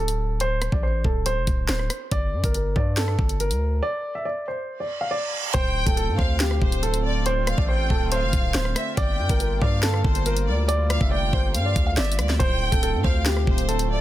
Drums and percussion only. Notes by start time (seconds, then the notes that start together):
0.08 closed hi-hat
0.40 closed hi-hat
0.62 cross-stick, closed hi-hat
0.72 kick
1.04 kick
1.26 closed hi-hat
1.47 kick, closed hi-hat
1.69 snare, closed hi-hat
1.79 cross-stick
1.90 cross-stick, closed hi-hat
2.11 kick, closed hi-hat
2.44 kick, closed hi-hat
2.54 closed hi-hat
2.76 kick
2.97 snare, closed hi-hat
3.08 cross-stick
3.19 kick
3.29 closed hi-hat
3.40 closed hi-hat
3.51 closed hi-hat
5.54 kick, closed hi-hat
5.87 kick, closed hi-hat
5.97 closed hi-hat
6.19 kick
6.40 snare, closed hi-hat
6.51 cross-stick
6.62 kick
6.72 closed hi-hat
6.83 closed hi-hat
6.94 closed hi-hat
7.26 closed hi-hat
7.47 cross-stick, closed hi-hat
7.58 kick
7.90 kick
8.12 closed hi-hat
8.33 kick, closed hi-hat
8.54 snare, closed hi-hat
8.65 cross-stick
8.76 cross-stick, closed hi-hat
8.97 kick, closed hi-hat
9.29 kick, closed hi-hat
9.40 closed hi-hat
9.62 kick
9.83 snare, closed hi-hat
9.94 cross-stick
10.04 kick
10.15 closed hi-hat
10.26 closed hi-hat
10.37 closed hi-hat
10.69 closed hi-hat
10.90 cross-stick, closed hi-hat
11.01 kick
11.33 kick
11.55 closed hi-hat
11.76 kick, closed hi-hat
11.97 snare, closed hi-hat
12.04 closed hi-hat
12.12 closed hi-hat
12.19 cross-stick, closed hi-hat
12.29 snare
12.40 kick, closed hi-hat
12.72 kick, closed hi-hat
12.83 closed hi-hat
13.04 kick
13.26 snare, closed hi-hat
13.37 cross-stick
13.47 kick
13.58 closed hi-hat
13.69 closed hi-hat
13.79 closed hi-hat